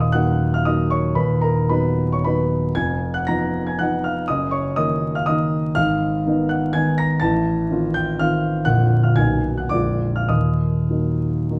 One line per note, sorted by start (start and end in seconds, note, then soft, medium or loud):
0.00 1.13 D#1 soft
0.00 1.13 D#2 medium
0.00 0.14 D#5 soft
0.00 0.56 F5 medium
0.00 0.14 D#6 medium
0.00 0.54 F6 medium
0.12 0.63 F#3 soft
0.12 0.64 A#3 soft
0.12 0.64 D#4 soft
0.12 0.51 F#5 medium
0.12 0.54 F#6 medium
0.54 0.67 F5 medium
0.54 0.67 F6 medium
0.65 1.13 F#3 soft
0.65 1.13 A#3 soft
0.65 1.13 D#4 soft
0.65 0.90 D#5 medium
0.65 0.92 D#6 medium
0.90 1.15 C#5 medium
0.90 1.16 C#6 medium
1.15 2.69 D#1 medium
1.15 2.69 D#2 medium
1.15 1.40 B4 medium
1.15 1.41 B5 medium
1.41 1.68 A#4 medium
1.41 1.69 A#5 medium
1.69 2.20 F#3 soft
1.69 2.20 B3 soft
1.69 2.20 D#4 soft
1.69 2.08 B4 medium
1.69 2.10 B5 medium
2.12 2.24 C#5 soft
2.12 2.24 C#6 medium
2.25 2.71 F#3 soft
2.25 2.71 B3 soft
2.25 2.71 D#4 soft
2.25 2.72 B4 medium
2.25 2.74 B5 medium
2.75 4.24 F1 medium
2.75 4.24 F2 medium
2.75 3.10 G#5 medium
2.75 3.13 G#6 medium
3.14 3.26 F#5 medium
3.14 3.26 F#6 medium
3.27 3.76 F3 soft
3.27 3.76 B3 soft
3.27 3.76 D#4 soft
3.27 3.64 A#5 medium
3.27 3.66 A#6 medium
3.67 3.79 G#5 soft
3.67 3.79 G#6 medium
3.79 4.24 F3 soft
3.79 4.24 B3 soft
3.79 4.25 D#4 soft
3.79 4.03 F#5 medium
3.79 4.04 F#6 medium
4.04 4.27 F5 medium
4.04 4.28 F6 medium
4.28 5.72 F#1 soft
4.28 5.72 F#2 medium
4.28 4.51 D#5 medium
4.28 4.51 D#6 medium
4.51 4.75 C#5 medium
4.51 4.76 C#6 medium
4.76 5.22 D#3 soft
4.76 5.23 A#3 soft
4.76 5.23 D#4 soft
4.76 5.11 D#5 medium
4.76 5.14 D#6 medium
5.15 5.26 F5 medium
5.15 5.27 F6 medium
5.26 5.71 D#3 soft
5.26 5.71 A#3 soft
5.26 5.72 D#4 soft
5.26 5.72 D#5 medium
5.26 5.75 D#6 medium
5.75 7.17 G#1 medium
5.75 7.17 G#2 medium
5.75 6.45 F5 medium
5.75 6.49 F6 loud
6.26 6.70 D#3 soft
6.26 6.70 B3 soft
6.26 6.70 D#4 medium
6.49 6.72 F#5 medium
6.49 6.73 F#6 medium
6.73 7.17 D#3 soft
6.73 7.17 B3 soft
6.73 7.17 D#4 soft
6.73 6.96 G#5 medium
6.73 6.97 G#6 medium
6.98 7.20 A#5 medium
6.98 7.21 A#6 medium
7.20 8.62 A1 medium
7.20 8.62 A2 medium
7.20 7.91 A5 medium
7.20 7.94 A6 medium
7.70 8.15 D#3 soft
7.70 8.16 C4 soft
7.70 8.16 F4 medium
7.94 8.18 G5 medium
7.94 8.19 G6 medium
8.19 8.62 D#3 soft
8.19 8.62 C4 soft
8.19 8.63 F4 soft
8.19 8.63 F5 medium
8.19 8.66 F6 medium
8.65 9.14 A#0 medium
8.65 9.14 A#1 medium
8.65 9.12 D3 soft
8.65 9.12 A#3 soft
8.65 9.13 F4 soft
8.65 9.00 F#5 medium
8.65 9.02 F#6 medium
9.03 9.16 F5 soft
9.03 9.16 F6 medium
9.16 9.70 B0 soft
9.16 9.71 B1 medium
9.16 9.68 F#3 soft
9.16 9.69 A#3 soft
9.16 9.69 D#4 soft
9.16 9.55 G#5 medium
9.16 9.58 G#6 medium
9.58 9.72 F#5 soft
9.58 9.72 F#6 medium
9.69 10.27 A#0 soft
9.69 10.27 A#1 medium
9.69 10.25 G#3 soft
9.69 10.25 A#3 soft
9.69 10.26 F4 soft
9.69 10.12 D5 medium
9.69 10.14 D6 medium
10.16 10.29 F5 soft
10.16 10.30 F6 medium
10.29 11.59 D#1 soft
10.29 11.59 D#2 soft
10.29 11.46 D#5 soft
10.29 11.49 D#6 medium
10.89 11.46 F#3 soft
10.89 11.46 A#3 soft
10.89 11.46 D#4 soft
11.50 11.59 F#3 soft
11.50 11.59 A#3 soft
11.50 11.59 D#4 soft